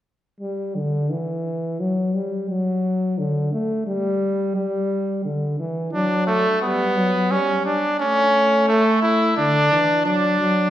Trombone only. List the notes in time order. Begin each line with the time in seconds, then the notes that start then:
0.40 G3
0.75 D3
1.10 E3
1.80 F#3
2.15 G3
2.49 F#3
3.18 D3
3.53 A3
3.87 G3
4.56 G3
5.25 D3
5.59 E3
5.93 F#3
6.63 G3
6.97 F#3
7.31 G3
8.00 A3
9.38 D3
9.72 E3
10.06 F#3
10.41 F#3